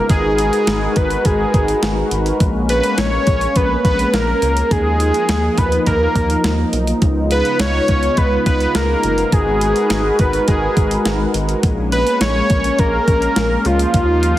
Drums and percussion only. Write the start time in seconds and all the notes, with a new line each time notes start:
0.09 kick, closed hi-hat
0.38 closed hi-hat
0.53 closed hi-hat
0.67 snare, closed hi-hat
0.96 kick, closed hi-hat
1.10 closed hi-hat
1.25 kick, closed hi-hat
1.54 kick, closed hi-hat
1.68 closed hi-hat
1.83 snare, closed hi-hat
2.11 closed hi-hat
2.26 closed hi-hat
2.40 kick, closed hi-hat
2.69 closed hi-hat
2.83 closed hi-hat
2.98 snare, closed hi-hat
3.27 kick, closed hi-hat
3.41 closed hi-hat
3.56 kick, closed hi-hat
3.85 kick, closed hi-hat
3.99 closed hi-hat
4.14 snare, closed hi-hat
4.42 closed hi-hat
4.57 closed hi-hat
4.71 kick, closed hi-hat
5.00 closed hi-hat
5.14 closed hi-hat
5.29 snare, closed hi-hat
5.58 kick, closed hi-hat
5.72 closed hi-hat
5.87 kick, closed hi-hat
6.16 kick, closed hi-hat
6.30 closed hi-hat
6.44 snare, closed hi-hat
6.73 closed hi-hat
6.87 closed hi-hat
7.02 kick, closed hi-hat
7.31 closed hi-hat
7.45 closed hi-hat
7.59 snare, closed hi-hat
7.88 kick, closed hi-hat
8.03 closed hi-hat
8.17 kick, closed hi-hat
8.46 kick, closed hi-hat
8.61 closed hi-hat
8.75 snare, closed hi-hat
9.03 closed hi-hat
9.18 closed hi-hat
9.32 kick, closed hi-hat
9.61 closed hi-hat
9.76 closed hi-hat
9.90 snare, closed hi-hat
10.19 kick, closed hi-hat
10.33 closed hi-hat
10.48 kick, closed hi-hat
10.77 kick, closed hi-hat
10.91 closed hi-hat
11.05 snare, closed hi-hat
11.34 closed hi-hat
11.49 closed hi-hat
11.63 kick, closed hi-hat
11.92 closed hi-hat
12.07 closed hi-hat
12.21 snare, closed hi-hat
12.50 kick, closed hi-hat
12.64 closed hi-hat
12.79 kick, closed hi-hat
13.08 kick, closed hi-hat
13.22 closed hi-hat
13.36 snare, closed hi-hat
13.65 closed hi-hat
13.79 closed hi-hat
13.94 kick, closed hi-hat
14.23 closed hi-hat